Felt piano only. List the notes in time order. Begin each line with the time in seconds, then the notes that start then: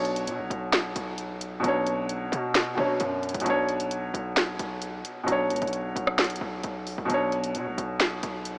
Already playing: B2 F#3 D4 C#5
1.60 B2 F#3
1.65 D4 C#5
2.75 B2 F#3 D4
2.79 C#5
3.41 B2 F#3
3.47 D4 C#5
5.24 B2 F#3
5.29 D4 C#5
7.05 B2 F#3
7.11 D4 C#5